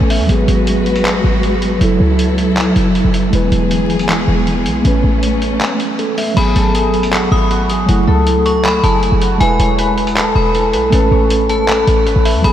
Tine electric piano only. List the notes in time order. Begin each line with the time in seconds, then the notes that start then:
Already playing: A3 C#4 A4 B4
0.10 E5
0.27 F#3 B3
0.32 G#4
1.79 F#3 E4
1.83 A4
3.31 G#3 E4
3.35 B4
4.83 A3 C#4
4.87 B4
5.99 A4
6.18 E5
6.34 F#3 B3
6.39 G#4
7.86 F#3 E4
7.91 A3
9.38 G#3 E4
9.43 B4
10.90 A3 C#4
10.95 B4
12.07 A4
12.25 E5
12.42 F#3 B3
12.47 G#4